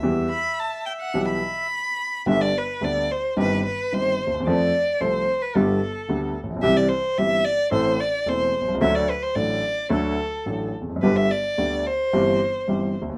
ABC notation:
X:1
M:4/4
L:1/16
Q:1/4=109
K:Em
V:1 name="Bandoneon"
e12 z4 | [K:G] z16 | z16 | z16 |
z16 | z16 |]
V:2 name="Violin"
z2 b2 a2 g f2 b6- b | [K:G] e d B2 d2 c2 B2 B2 c3 z | d4 c3 B A6 z2 | e d c2 e2 d2 c2 d2 c3 z |
e d B c d4 A6 z2 | B e d4 c8 z2 |]
V:3 name="Grand piano" clef=bass
[E,,E,G,B,G]2 z6 [B,,,B,,E,G,B,G]2 z6 | [K:G] [G,,,G,,D,G,B,G]2 z2 [D,,D,G,B,G]2 z2 [G,,,G,,_E,G,CG]2 z2 [G,,,G,,E,G,CG]2 z/2 D,,/2 _E,,/2 =E,,/2 | [=F,,=F,A,CA]2 z2 [C,,C,F,A,CA]2 z2 [G,,,G,,D,G,B,G]2 z2 [D,,D,G,B,G]2 z/2 A,,,/2 _B,,,/2 =B,,,/2 | [C,,C,E,G,CG]2 z2 [G,,,G,,E,G,CG]2 z2 [A,,,A,,E,A,CA]2 z2 [E,,,E,,E,A,CA]2 z/2 B,,,/2 C,,/2 ^C,,/2 |
[D,,D,F,A,DA]2 z2 [A,,,A,,F,A,DA]2 z2 [D,,D,F,A,DA]2 z2 [A,,,A,,F,A,DA]2 z/2 E,,/2 =F,,/2 ^F,,/2 | [G,,,G,,D,G,B,G]2 z2 [D,,D,G,B,G]2 z2 [G,,,G,,E,G,CG]2 z2 [G,,,G,,E,G,CG]2 z/2 D,,/2 _E,,/2 z/2 |]